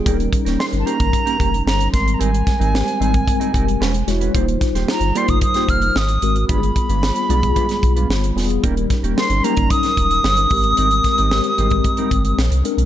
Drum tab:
HH |xxxx-xxxxxxx-xxx|xxxx-xxxxxxx-xxx|xxxx-xxxxxxx-xxx|xxxx-xxxxxxx-xox|
SD |---oo-------o-o-|--o-o-------o-o-|--ooo----o--o---|----o----o--o-o-|
BD |o-o----oo-o---o-|--o----oo-o-----|o-o----oo-o-----|o-o----oo-o-----|

HH |xxxx-xxxxxxx-xox|xxxx-xxxxxxx-xxx|
SD |--o-o----o--o---|--o-o-------o---|
BD |o-o----oo-o---o-|--o----oo-o-----|